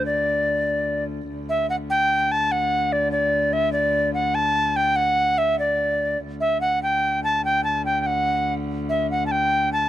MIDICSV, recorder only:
0, 0, Header, 1, 2, 480
1, 0, Start_track
1, 0, Key_signature, 2, "major"
1, 0, Tempo, 412229
1, 58, Time_signature, 6, 3, 24, 8
1, 11515, End_track
2, 0, Start_track
2, 0, Title_t, "Recorder"
2, 0, Program_c, 0, 74
2, 66, Note_on_c, 0, 74, 78
2, 1215, Note_off_c, 0, 74, 0
2, 1740, Note_on_c, 0, 76, 73
2, 1962, Note_off_c, 0, 76, 0
2, 1976, Note_on_c, 0, 78, 77
2, 2046, Note_off_c, 0, 78, 0
2, 2213, Note_on_c, 0, 79, 98
2, 2697, Note_on_c, 0, 81, 89
2, 2714, Note_off_c, 0, 79, 0
2, 2931, Note_on_c, 0, 78, 94
2, 2948, Note_off_c, 0, 81, 0
2, 3405, Note_on_c, 0, 74, 82
2, 3423, Note_off_c, 0, 78, 0
2, 3621, Note_off_c, 0, 74, 0
2, 3628, Note_on_c, 0, 74, 92
2, 4111, Note_on_c, 0, 76, 93
2, 4128, Note_off_c, 0, 74, 0
2, 4332, Note_off_c, 0, 76, 0
2, 4339, Note_on_c, 0, 74, 84
2, 4803, Note_off_c, 0, 74, 0
2, 4819, Note_on_c, 0, 78, 86
2, 5062, Note_on_c, 0, 81, 100
2, 5079, Note_off_c, 0, 78, 0
2, 5546, Note_on_c, 0, 79, 89
2, 5564, Note_off_c, 0, 81, 0
2, 5775, Note_on_c, 0, 78, 96
2, 5792, Note_off_c, 0, 79, 0
2, 6266, Note_on_c, 0, 76, 85
2, 6283, Note_off_c, 0, 78, 0
2, 6504, Note_off_c, 0, 76, 0
2, 6511, Note_on_c, 0, 74, 82
2, 7198, Note_off_c, 0, 74, 0
2, 7459, Note_on_c, 0, 76, 84
2, 7690, Note_off_c, 0, 76, 0
2, 7697, Note_on_c, 0, 78, 72
2, 7939, Note_off_c, 0, 78, 0
2, 7952, Note_on_c, 0, 79, 86
2, 8410, Note_off_c, 0, 79, 0
2, 8429, Note_on_c, 0, 81, 89
2, 8665, Note_off_c, 0, 81, 0
2, 8673, Note_on_c, 0, 79, 92
2, 8889, Note_off_c, 0, 79, 0
2, 8896, Note_on_c, 0, 81, 85
2, 9138, Note_off_c, 0, 81, 0
2, 9146, Note_on_c, 0, 79, 80
2, 9325, Note_off_c, 0, 79, 0
2, 9325, Note_on_c, 0, 79, 57
2, 9389, Note_on_c, 0, 78, 87
2, 9407, Note_off_c, 0, 79, 0
2, 9943, Note_off_c, 0, 78, 0
2, 10356, Note_on_c, 0, 76, 72
2, 10589, Note_off_c, 0, 76, 0
2, 10610, Note_on_c, 0, 78, 73
2, 10760, Note_off_c, 0, 78, 0
2, 10786, Note_on_c, 0, 81, 56
2, 10846, Note_on_c, 0, 79, 81
2, 10864, Note_off_c, 0, 81, 0
2, 11319, Note_off_c, 0, 79, 0
2, 11326, Note_on_c, 0, 81, 83
2, 11515, Note_off_c, 0, 81, 0
2, 11515, End_track
0, 0, End_of_file